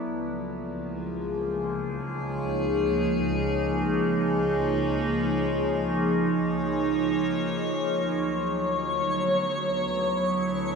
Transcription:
0.01 double bass section C#2, ambient pad F3
0.41 ambient pad A#3
0.59 ambient pad G#4
1.66 ambient pad D#4 C#5
8.13 double bass section D2, ambient pad F#3, synth texture C#5 C#6
8.80 ambient pad B3
9.77 ambient pad E4
10.15 ambient pad A4

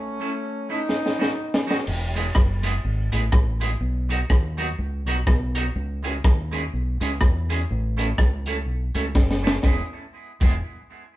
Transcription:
Already playing: horn section A3 C#4
0.20 clean electric guitar A3 C#4 E4 A4
0.69 clean electric guitar A3 C#4 E4 A4, horn section B3 D#4
0.89 snare
1.06 snare
1.18 clean electric guitar F#3 B3 D#4 F#4, snare
1.54 snare
1.67 clean electric guitar F#3 B3 D#4 F#4
1.71 snare
1.87 fingered electric bass E1, crash
2.15 clean electric guitar G#3 B3 E4 G#4, closed hi-hat
2.35 fingered electric bass F#1, kick, cross-stick
2.63 clean electric guitar G#3 B3 E4 G#4, closed hi-hat
2.84 fingered electric bass G#1
3.12 fingered electric bass A1, clean electric guitar G#3 B3 E4 G#4, closed hi-hat
3.32 fingered electric bass A1, kick, cross-stick
3.60 clean electric guitar G#3 B3 E4 G#4, closed hi-hat
3.81 fingered electric bass B1
4.09 clean electric guitar F#3 B3 D#4 F#4, closed hi-hat
4.30 fingered electric bass D#2, kick, cross-stick
4.57 clean electric guitar F#3 B3 D#4 F#4, closed hi-hat
4.78 fingered electric bass C#2
5.06 fingered electric bass B1, clean electric guitar F#3 B3 D#4 F#4, closed hi-hat
5.27 fingered electric bass B1, kick, cross-stick
5.55 clean electric guitar F#3 B3 D#4 F#4, closed hi-hat
5.75 fingered electric bass C#2
6.03 clean electric guitar G#3 C#4 E4 G#4, closed hi-hat
6.24 fingered electric bass D#2, kick, cross-stick
6.51 clean electric guitar G#3 C#4 E4 G#4, closed hi-hat
6.73 fingered electric bass B1
7.01 fingered electric bass C#2, clean electric guitar G#3 C#4 E4 G#4, closed hi-hat
7.21 fingered electric bass E2, kick, cross-stick
7.49 clean electric guitar G#3 C#4 E4 G#4, closed hi-hat
7.71 fingered electric bass A1
7.97 clean electric guitar A3 C#4 E4 A4, closed hi-hat
8.18 fingered electric bass C#2, kick, cross-stick
8.46 clean electric guitar A3 C#4 E4 A4, closed hi-hat
8.67 fingered electric bass B1
8.95 fingered electric bass C#2, clean electric guitar A3 C#4 E4 A4, closed hi-hat
9.15 fingered electric bass F#1, kick, snare
9.31 snare
9.43 clean electric guitar A3 C#4 E4 A4
9.47 snare
9.63 fingered electric bass E1, clean electric guitar G#3 B3 E4 G#4, kick, snare
10.40 fingered electric bass E1, clean electric guitar G#3 B3 E4 G#4, kick, crash

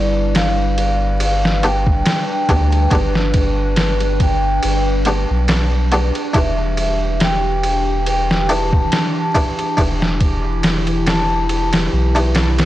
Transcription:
Already playing: sub bass G1, ambient pad G3 D4 B4, harpsichord B3 D4 G4 B4, vibraphone D5
0.35 vibraphone F5, snare, ride
0.78 ride
1.20 vibraphone F5, ride
1.45 snare
1.63 harpsichord B3 D4 G4 B4, vibraphone G5, ride
1.87 kick
2.06 snare, ride
2.31 vibraphone G5
2.49 sub bass D2, harpsichord B3 D4 G4 B4, kick, ride
2.72 ride
2.91 sub bass G1, harpsichord B3 D4 G4, kick, ride
2.95 harpsichord B4
3.15 snare
3.34 kick, ride
3.76 snare, ride
4.00 ride
4.20 vibraphone G5, kick, ride
4.63 sub bass G1, ride
5.05 harpsichord B3 D4 G4 B4, ride
5.31 sub bass B1
5.48 snare, ride
5.92 harpsichord B3 D4 G4 B4, ride
6.15 ride
6.33 sub bass E1, ambient pad E3 G4, harpsichord D4 E4 G4, vibraphone E5, kick, ride
6.38 harpsichord B4
6.77 vibraphone E5, ride
7.20 vibraphone G5, snare, ride
7.63 ride
8.06 vibraphone G5, ride
8.31 snare
8.49 harpsichord D4 E4 G4 B4, vibraphone A5, ride
8.73 kick
8.92 snare, ride
9.19 vibraphone A5
9.35 harpsichord D4 E4 G4 B4, kick, ride
9.59 ride
9.77 sub bass E1, harpsichord D4 E4 G4 B4, ambient pad E4, kick, ride
10.02 snare
10.21 kick, ride
10.63 snare, ride
10.87 ride
11.06 vibraphone A5, snare, ride
11.49 ride
11.73 snare, ride
11.93 sub bass B1
12.15 harpsichord D4 E4 G4, ride
12.20 harpsichord B4
12.35 snare, ride
12.59 snare, ride

